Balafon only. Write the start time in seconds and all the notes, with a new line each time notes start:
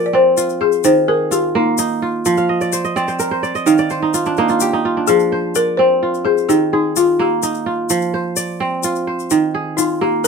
0.06 D5
0.15 C5
0.61 G#4
0.85 C5
1.08 A#4
1.32 G4
1.57 D#4
5.07 G#4
5.56 A#4
5.77 C5
6.25 G#4
6.49 G4
6.73 D#4
6.97 F4
7.21 G4
9.77 D#4
10.01 G4
10.24 A#4